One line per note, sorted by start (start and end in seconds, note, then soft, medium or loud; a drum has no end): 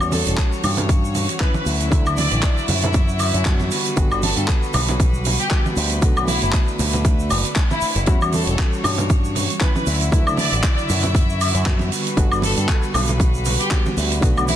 0.00 0.22 E2 medium
0.00 1.37 E3 medium
0.00 1.37 G3 medium
0.00 1.65 G3 medium
0.00 1.38 C#4 medium
0.00 1.38 F#4 loud
0.00 5.98 F#4 medium
0.00 1.65 C#5 medium
0.00 high woodblock medium
0.00 shaker soft
0.12 0.21 A4 medium
0.12 open hi-hat loud
0.12 high conga medium
0.12 shaker medium
0.27 0.36 E1 medium
0.27 0.34 A4 medium
0.27 closed hi-hat medium
0.27 shaker soft
0.38 kick loud
0.38 clap loud
0.38 closed hi-hat medium
0.38 shaker medium
0.52 shaker soft
0.63 1.26 G2 medium
0.63 open hi-hat loud
0.63 low conga medium
0.63 high woodblock medium
0.63 shaker medium
0.77 closed hi-hat medium
0.77 low conga loud
0.77 shaker soft
0.89 kick loud
0.89 closed hi-hat medium
0.89 high conga medium
0.89 shaker medium
1.05 shaker soft
1.15 open hi-hat loud
1.15 low conga medium
1.15 shaker medium
1.29 closed hi-hat medium
1.29 shaker medium
1.40 1.89 D3 medium
1.40 1.89 F#3 medium
1.40 1.89 C#4 medium
1.40 1.89 E4 medium
1.40 1.50 B4 medium
1.40 kick loud
1.40 clap loud
1.40 closed hi-hat medium
1.40 shaker medium
1.54 1.62 B4 medium
1.54 high conga loud
1.54 shaker soft
1.66 1.88 D2 loud
1.66 3.70 E4 medium
1.66 3.70 E5 medium
1.66 open hi-hat loud
1.66 shaker medium
1.80 closed hi-hat medium
1.80 shaker medium
1.91 2.04 D2 loud
1.91 3.43 C#3 medium
1.91 3.42 D3 medium
1.91 3.43 F#3 medium
1.91 3.43 E4 loud
1.91 kick loud
1.91 closed hi-hat medium
1.91 shaker medium
2.06 2.27 D2 medium
2.06 high woodblock medium
2.06 shaker soft
2.17 2.57 D5 medium
2.17 open hi-hat loud
2.17 high conga medium
2.17 shaker medium
2.31 2.41 A1 medium
2.31 closed hi-hat medium
2.31 shaker soft
2.42 kick loud
2.42 clap loud
2.42 closed hi-hat medium
2.42 shaker medium
2.57 shaker soft
2.68 3.31 F#2 medium
2.68 open hi-hat loud
2.68 low conga medium
2.68 shaker medium
2.82 closed hi-hat medium
2.82 low conga loud
2.82 shaker soft
2.93 kick loud
2.93 closed hi-hat medium
2.93 high conga medium
2.93 shaker medium
3.08 shaker soft
3.19 open hi-hat loud
3.19 high woodblock medium
3.19 shaker medium
3.34 3.68 F#2 loud
3.34 closed hi-hat medium
3.34 shaker soft
3.45 3.94 D3 medium
3.45 3.94 G3 medium
3.45 3.94 B3 medium
3.45 3.94 F#4 medium
3.45 kick loud
3.45 clap loud
3.45 closed hi-hat medium
3.45 shaker medium
3.60 high conga loud
3.60 shaker soft
3.71 6.00 G3 medium
3.71 8.03 B4 medium
3.71 open hi-hat loud
3.71 shaker medium
3.85 closed hi-hat medium
3.85 shaker soft
3.97 4.09 G1 loud
3.97 5.48 D3 medium
3.97 5.48 G3 medium
3.97 5.48 B3 medium
3.97 5.49 F#4 loud
3.97 kick loud
3.97 closed hi-hat medium
3.97 shaker medium
4.11 4.32 G1 medium
4.11 high woodblock medium
4.11 shaker soft
4.23 4.32 A4 medium
4.23 open hi-hat loud
4.23 high conga loud
4.23 shaker medium
4.37 4.46 G2 medium
4.37 4.44 A4 medium
4.37 closed hi-hat medium
4.37 shaker soft
4.48 kick loud
4.48 clap loud
4.48 closed hi-hat medium
4.48 shaker medium
4.63 shaker soft
4.74 5.36 B1 medium
4.74 open hi-hat loud
4.74 low conga medium
4.74 high woodblock medium
4.74 shaker medium
4.88 closed hi-hat medium
4.88 low conga loud
4.88 shaker soft
5.00 kick loud
5.00 closed hi-hat medium
5.00 high conga medium
5.00 shaker medium
5.14 shaker soft
5.25 open hi-hat loud
5.25 low conga medium
5.25 shaker medium
5.39 5.56 G4 medium
5.39 closed hi-hat medium
5.39 shaker soft
5.51 5.99 D3 medium
5.51 5.99 G3 medium
5.51 6.00 B3 medium
5.51 6.00 F#4 medium
5.51 kick loud
5.51 clap loud
5.51 closed hi-hat medium
5.51 shaker medium
5.66 high conga loud
5.66 shaker soft
5.77 5.99 D2 loud
5.77 open hi-hat loud
5.77 shaker medium
5.90 closed hi-hat medium
5.90 shaker medium
6.02 6.14 B1 loud
6.02 7.53 D3 medium
6.02 7.53 A3 medium
6.02 8.05 A3 medium
6.02 7.53 B3 medium
6.02 8.05 D4 medium
6.02 7.54 F#4 loud
6.02 kick loud
6.02 closed hi-hat medium
6.02 shaker medium
6.16 6.38 B1 medium
6.16 high woodblock medium
6.16 shaker soft
6.28 6.37 E4 medium
6.28 open hi-hat loud
6.28 high conga loud
6.28 shaker medium
6.42 6.52 F#1 medium
6.42 6.49 E4 medium
6.42 closed hi-hat medium
6.42 shaker soft
6.53 kick loud
6.53 clap loud
6.53 closed hi-hat medium
6.53 shaker medium
6.68 shaker soft
6.79 7.30 D2 medium
6.79 open hi-hat loud
6.79 low conga medium
6.79 shaker medium
6.93 closed hi-hat medium
6.93 low conga medium
6.93 shaker soft
7.05 kick loud
7.05 closed hi-hat medium
7.05 high conga medium
7.05 shaker medium
7.19 shaker soft
7.30 7.42 F#1 loud
7.30 open hi-hat loud
7.30 high woodblock medium
7.30 shaker medium
7.45 closed hi-hat medium
7.45 shaker medium
7.55 kick loud
7.55 clap loud
7.55 closed hi-hat medium
7.55 shaker medium
7.70 8.07 E4 medium
7.70 high conga medium
7.70 shaker soft
7.81 muted picked electric bass stroke soft
7.81 open hi-hat loud
7.81 shaker medium
7.96 8.05 F#1 medium
7.96 closed hi-hat medium
7.96 shaker soft
8.06 8.19 E2 loud
8.06 9.58 E3 medium
8.06 9.58 G3 medium
8.06 9.85 G3 medium
8.06 9.59 C#4 medium
8.06 14.19 F#4 medium
8.06 9.59 F#4 loud
8.06 9.85 C#5 medium
8.06 kick loud
8.06 closed hi-hat medium
8.06 shaker medium
8.21 8.43 E2 medium
8.21 high woodblock medium
8.21 shaker soft
8.32 8.42 A4 medium
8.32 open hi-hat loud
8.32 high conga medium
8.32 shaker medium
8.46 8.57 E1 medium
8.46 8.54 A4 medium
8.46 closed hi-hat medium
8.46 shaker soft
8.59 kick loud
8.59 clap loud
8.59 closed hi-hat medium
8.59 shaker medium
8.73 shaker soft
8.84 9.46 G2 medium
8.84 open hi-hat loud
8.84 low conga medium
8.84 high woodblock medium
8.84 shaker medium
8.98 closed hi-hat medium
8.98 low conga medium
8.98 shaker medium
9.10 kick loud
9.10 closed hi-hat medium
9.10 high conga medium
9.10 shaker medium
9.24 shaker soft
9.35 open hi-hat loud
9.35 low conga medium
9.35 shaker medium
9.50 closed hi-hat medium
9.50 shaker soft
9.61 10.09 D3 medium
9.61 10.10 F#3 medium
9.61 10.10 C#4 medium
9.61 10.10 E4 medium
9.61 9.70 B4 medium
9.61 kick loud
9.61 clap loud
9.61 closed hi-hat medium
9.61 shaker medium
9.75 9.82 B4 medium
9.75 high conga loud
9.75 shaker soft
9.86 10.09 D2 medium
9.86 11.90 E4 medium
9.86 11.90 E5 medium
9.86 open hi-hat loud
9.86 shaker medium
10.01 closed hi-hat medium
10.01 shaker medium
10.12 10.24 D2 loud
10.12 11.64 C#3 medium
10.12 11.63 D3 medium
10.12 11.63 F#3 medium
10.12 11.64 E4 loud
10.12 kick loud
10.12 closed hi-hat medium
10.12 shaker medium
10.26 10.48 D2 medium
10.26 high woodblock medium
10.26 shaker soft
10.37 10.77 D5 medium
10.37 open hi-hat loud
10.37 high conga loud
10.37 shaker medium
10.52 10.62 A1 medium
10.52 closed hi-hat medium
10.52 shaker medium
10.63 kick loud
10.63 clap loud
10.63 closed hi-hat medium
10.63 shaker medium
10.78 shaker soft
10.89 11.51 F#2 medium
10.89 open hi-hat loud
10.89 low conga medium
10.89 shaker medium
11.03 closed hi-hat medium
11.03 low conga medium
11.03 shaker soft
11.14 kick loud
11.14 closed hi-hat medium
11.14 high conga medium
11.14 shaker medium
11.29 shaker soft
11.41 open hi-hat loud
11.41 high woodblock medium
11.41 shaker medium
11.54 11.89 F#2 loud
11.54 closed hi-hat medium
11.54 shaker medium
11.66 12.15 D3 medium
11.66 12.15 G3 medium
11.66 12.15 B3 medium
11.66 12.15 F#4 medium
11.66 kick loud
11.66 clap loud
11.66 closed hi-hat medium
11.66 shaker medium
11.79 high conga medium
11.79 shaker soft
11.92 14.20 G3 medium
11.92 14.56 B4 medium
11.92 open hi-hat loud
11.92 shaker medium
12.07 closed hi-hat medium
12.07 shaker medium
12.17 12.29 G1 loud
12.17 13.68 D3 medium
12.17 13.68 G3 medium
12.17 13.69 B3 medium
12.17 13.69 F#4 loud
12.17 kick loud
12.17 closed hi-hat medium
12.17 shaker medium
12.31 12.53 G1 medium
12.31 high woodblock medium
12.31 shaker soft
12.42 12.52 A4 medium
12.42 open hi-hat loud
12.42 high conga loud
12.42 shaker medium
12.57 12.67 G2 medium
12.57 12.64 A4 medium
12.57 closed hi-hat medium
12.57 shaker medium
12.69 kick loud
12.69 clap loud
12.69 closed hi-hat medium
12.69 shaker medium
12.83 shaker soft
12.94 13.56 B1 medium
12.94 open hi-hat loud
12.94 low conga medium
12.94 high woodblock medium
12.94 shaker medium
13.07 closed hi-hat medium
13.07 low conga medium
13.07 shaker medium
13.20 kick loud
13.20 closed hi-hat medium
13.20 high conga medium
13.20 shaker medium
13.34 shaker soft
13.45 open hi-hat loud
13.45 low conga medium
13.45 shaker loud
13.59 13.76 G4 medium
13.59 closed hi-hat medium
13.59 shaker medium
13.71 14.20 D3 medium
13.71 14.20 G3 medium
13.71 14.20 B3 medium
13.71 14.20 F#4 medium
13.71 kick loud
13.71 clap loud
13.71 closed hi-hat medium
13.71 shaker medium
13.86 high conga medium
13.86 shaker soft
13.97 14.19 D2 loud
13.97 open hi-hat loud
13.97 shaker medium
14.11 closed hi-hat medium
14.11 shaker medium
14.21 14.34 B1 loud
14.21 14.56 D3 medium
14.21 14.56 A3 medium
14.21 14.56 B3 medium
14.21 14.56 D4 medium
14.21 14.56 F#4 loud
14.21 kick loud
14.21 closed hi-hat medium
14.21 shaker medium
14.37 14.56 B1 medium
14.37 high woodblock medium
14.37 shaker soft
14.48 14.56 E4 medium
14.48 open hi-hat loud
14.48 high conga loud
14.48 shaker medium